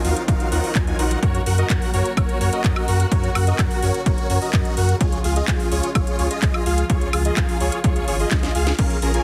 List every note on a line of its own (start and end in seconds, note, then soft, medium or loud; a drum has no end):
0.00 1.19 D#3 medium
0.00 4.97 F#3 medium
0.00 1.21 C4 medium
0.00 1.19 F4 medium
0.04 0.13 D#2 medium
0.04 0.23 D#4 medium
0.04 0.23 F4 medium
0.04 0.23 F#4 medium
0.04 0.23 A#4 medium
0.04 0.23 F5 medium
0.04 open hi-hat loud
0.17 closed hi-hat medium
0.28 0.37 D#1 medium
0.28 0.49 D#4 loud
0.28 0.49 F4 medium
0.28 0.49 F#4 medium
0.28 0.49 A#4 medium
0.28 0.49 F5 loud
0.28 kick loud
0.28 closed hi-hat medium
0.40 closed hi-hat soft
0.52 0.60 D#2 loud
0.52 0.73 D#4 medium
0.52 0.73 F4 medium
0.52 0.73 F#4 medium
0.52 0.73 A#4 medium
0.52 0.73 F#5 medium
0.52 open hi-hat loud
0.64 open hi-hat medium
0.75 0.93 D#2 medium
0.75 0.84 D#4 medium
0.75 0.84 F4 medium
0.75 0.84 F#4 medium
0.75 0.84 A#4 medium
0.75 0.84 G#5 loud
0.75 kick loud
0.75 clap loud
0.75 closed hi-hat medium
0.87 0.96 D#4 medium
0.87 0.96 F4 medium
0.87 0.96 F#4 medium
0.87 0.96 A#4 medium
0.87 0.96 G#5 loud
0.87 closed hi-hat soft
0.99 1.16 A#1 medium
0.99 1.19 D#4 medium
0.99 1.19 F4 medium
0.99 1.19 F#4 medium
0.99 1.19 A#4 medium
0.99 1.19 F#5 medium
0.99 open hi-hat loud
1.11 closed hi-hat soft
1.23 1.40 F#2 loud
1.23 8.75 C#3 medium
1.23 4.97 A#3 medium
1.23 4.97 F#4 medium
1.23 1.41 F#4 loud
1.23 1.41 A#4 medium
1.23 1.41 C#5 loud
1.23 kick loud
1.23 closed hi-hat medium
1.35 closed hi-hat soft
1.46 1.63 F#2 loud
1.46 1.55 F#4 medium
1.46 1.55 A#4 medium
1.46 1.55 F#5 medium
1.46 open hi-hat loud
1.58 1.67 F#4 medium
1.58 1.67 A#4 medium
1.58 1.67 D#5 loud
1.58 closed hi-hat soft
1.70 1.78 F#2 medium
1.70 1.90 F#4 medium
1.70 1.90 A#4 medium
1.70 1.90 F#5 loud
1.70 kick loud
1.70 clap loud
1.70 closed hi-hat medium
1.82 open hi-hat medium
1.94 2.02 F#2 medium
1.94 2.12 F#4 medium
1.94 2.12 A#4 medium
1.94 2.12 C#5 medium
1.94 open hi-hat loud
2.06 closed hi-hat medium
2.17 2.26 F#1 medium
2.17 2.38 F#4 loud
2.17 2.38 A#4 medium
2.17 2.38 C#5 loud
2.17 kick loud
2.17 closed hi-hat medium
2.17 high woodblock medium
2.29 closed hi-hat soft
2.41 2.49 F#2 medium
2.41 2.50 F#4 loud
2.41 2.50 A#4 medium
2.41 2.50 C#5 loud
2.41 open hi-hat loud
2.53 2.62 F#4 medium
2.53 2.62 A#4 medium
2.53 2.62 D#5 loud
2.53 closed hi-hat medium
2.64 2.73 F#2 medium
2.64 2.85 F#4 medium
2.64 2.85 A#4 medium
2.64 2.85 D#5 loud
2.64 kick loud
2.64 clap loud
2.64 closed hi-hat medium
2.76 high woodblock medium
2.88 3.05 F#2 loud
2.88 3.06 F#4 medium
2.88 3.06 A#4 medium
2.88 3.06 F#5 medium
2.88 open hi-hat loud
3.00 closed hi-hat soft
3.12 3.29 F#2 loud
3.12 3.30 F#4 loud
3.12 3.30 A#4 medium
3.12 3.30 C#5 loud
3.12 kick loud
3.12 closed hi-hat medium
3.24 closed hi-hat soft
3.35 3.52 F#2 loud
3.35 3.44 F#4 medium
3.35 3.44 A#4 medium
3.35 3.44 F#5 medium
3.35 open hi-hat loud
3.35 high woodblock medium
3.47 3.56 F#4 medium
3.47 3.56 A#4 medium
3.47 3.56 D#5 medium
3.47 closed hi-hat medium
3.59 3.67 F#2 medium
3.59 3.79 F#4 loud
3.59 3.79 A#4 medium
3.59 3.79 F#5 loud
3.59 kick loud
3.59 clap loud
3.59 closed hi-hat medium
3.59 high woodblock medium
3.71 open hi-hat medium
3.83 3.91 F#2 medium
3.83 4.01 F#4 medium
3.83 4.01 A#4 medium
3.83 4.01 C#5 medium
3.83 open hi-hat loud
3.94 closed hi-hat medium
4.06 4.15 F#1 medium
4.06 4.27 F#4 loud
4.06 4.27 A#4 medium
4.06 4.27 C#5 loud
4.06 kick loud
4.06 closed hi-hat medium
4.18 closed hi-hat soft
4.30 4.38 F#2 medium
4.30 4.39 F#4 medium
4.30 4.39 A#4 medium
4.30 4.39 C#5 loud
4.30 open hi-hat loud
4.42 4.51 F#4 medium
4.42 4.51 A#4 medium
4.42 4.51 D#5 loud
4.42 open hi-hat medium
4.53 4.62 F#2 loud
4.53 4.74 F#4 loud
4.53 4.74 A#4 medium
4.53 4.74 D#5 loud
4.53 kick loud
4.53 clap loud
4.53 closed hi-hat medium
4.65 closed hi-hat soft
4.77 4.94 F#2 loud
4.77 4.95 F#4 medium
4.77 4.95 A#4 medium
4.77 4.95 F#5 medium
4.77 open hi-hat loud
4.89 closed hi-hat medium
5.01 5.18 C#2 loud
5.01 8.75 F3 medium
5.01 6.88 G#3 medium
5.01 5.19 F4 loud
5.01 8.75 F4 medium
5.01 5.19 G#4 medium
5.01 5.19 C#5 loud
5.01 kick loud
5.01 closed hi-hat medium
5.12 closed hi-hat soft
5.24 5.41 C#2 loud
5.24 5.33 F4 medium
5.24 5.33 G#4 medium
5.24 5.33 F5 medium
5.24 open hi-hat loud
5.36 5.45 F4 medium
5.36 5.45 G#4 medium
5.36 5.45 D#5 loud
5.36 closed hi-hat medium
5.48 5.57 C#2 medium
5.48 5.68 F4 loud
5.48 5.68 G#4 medium
5.48 5.68 F5 loud
5.48 kick loud
5.48 clap loud
5.48 closed hi-hat medium
5.60 open hi-hat medium
5.72 5.80 C#2 medium
5.72 5.90 F4 medium
5.72 5.90 G#4 medium
5.72 5.90 C#5 medium
5.72 open hi-hat loud
5.83 closed hi-hat medium
5.95 6.04 G#1 medium
5.95 6.16 F4 loud
5.95 6.16 G#4 medium
5.95 6.16 C#5 loud
5.95 kick loud
5.95 closed hi-hat medium
5.95 high woodblock medium
6.07 closed hi-hat soft
6.19 6.27 C#2 medium
6.19 6.28 F4 loud
6.19 6.28 G#4 medium
6.19 6.28 C#5 loud
6.19 open hi-hat loud
6.30 6.40 F4 medium
6.30 6.40 G#4 medium
6.30 6.40 D#5 loud
6.30 closed hi-hat medium
6.42 6.51 C#2 medium
6.42 6.63 F4 loud
6.42 6.63 G#4 medium
6.42 6.63 D#5 loud
6.42 kick loud
6.42 clap loud
6.42 closed hi-hat medium
6.54 high woodblock medium
6.66 6.83 C#2 loud
6.66 6.84 F4 medium
6.66 6.84 G#4 medium
6.66 6.84 F5 loud
6.66 open hi-hat loud
6.78 closed hi-hat medium
6.90 7.07 C#2 loud
6.90 8.77 A#3 medium
6.90 7.08 F4 loud
6.90 7.08 G#4 medium
6.90 7.08 C#5 loud
6.90 kick loud
6.90 closed hi-hat medium
7.01 closed hi-hat soft
7.13 7.30 C#2 loud
7.13 7.22 F4 medium
7.13 7.22 G#4 medium
7.13 7.22 F5 medium
7.13 open hi-hat loud
7.13 high woodblock medium
7.25 7.34 F4 medium
7.25 7.34 G#4 medium
7.25 7.34 D#5 medium
7.25 closed hi-hat medium
7.37 7.45 C#2 medium
7.37 7.57 F4 loud
7.37 7.57 G#4 medium
7.37 7.57 F5 loud
7.37 kick loud
7.37 clap loud
7.37 closed hi-hat medium
7.37 high woodblock medium
7.49 open hi-hat medium
7.60 7.69 C#2 medium
7.60 7.79 F4 medium
7.60 7.79 G#4 medium
7.60 7.79 C#5 medium
7.60 open hi-hat loud
7.72 closed hi-hat medium
7.84 8.01 C#2 medium
7.84 8.05 F4 loud
7.84 8.05 G#4 medium
7.84 8.05 C#5 loud
7.84 kick loud
7.84 closed hi-hat medium
7.96 closed hi-hat soft
8.08 8.25 G#1 medium
8.08 8.17 F4 medium
8.08 8.17 G#4 medium
8.08 8.17 C#5 loud
8.08 open hi-hat loud
8.20 8.29 F4 medium
8.20 8.29 G#4 medium
8.20 8.29 D#5 loud
8.20 open hi-hat medium
8.31 8.49 C#2 loud
8.31 8.52 F4 medium
8.31 8.52 G#4 medium
8.31 8.52 D#5 loud
8.31 kick loud
8.31 snare medium
8.31 clap loud
8.31 closed hi-hat medium
8.43 snare medium
8.43 closed hi-hat soft
8.55 8.72 C#2 loud
8.55 8.73 F4 medium
8.55 8.73 G#4 medium
8.55 8.73 F5 medium
8.55 open hi-hat loud
8.67 snare medium
8.67 closed hi-hat medium
8.79 8.96 A#1 loud
8.79 8.97 C#4 loud
8.79 8.97 F4 medium
8.79 8.97 G#4 medium
8.79 8.97 A#4 medium
8.79 8.97 F5 loud
8.79 kick loud
8.79 closed hi-hat medium
8.79 crash loud
8.90 closed hi-hat soft
9.02 9.19 A#1 loud
9.02 9.11 C#4 medium
9.02 9.11 F4 medium
9.02 9.11 G#4 medium
9.02 9.11 A#4 medium
9.02 9.11 A#5 medium
9.02 open hi-hat loud
9.14 9.23 C#4 medium
9.14 9.23 F4 medium
9.14 9.23 G#4 medium
9.14 9.23 A#4 medium
9.14 9.23 G#5 medium
9.14 closed hi-hat medium